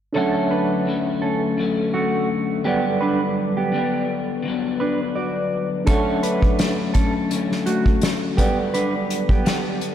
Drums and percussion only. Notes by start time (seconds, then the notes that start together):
5.87 kick, closed hi-hat
6.23 closed hi-hat
6.42 kick
6.59 snare, closed hi-hat
6.94 kick, closed hi-hat
7.31 closed hi-hat
7.52 snare
7.66 closed hi-hat
7.86 kick
8.01 snare, closed hi-hat
8.38 kick, closed hi-hat
8.74 closed hi-hat
9.10 closed hi-hat
9.29 kick
9.46 snare, closed hi-hat
9.81 closed hi-hat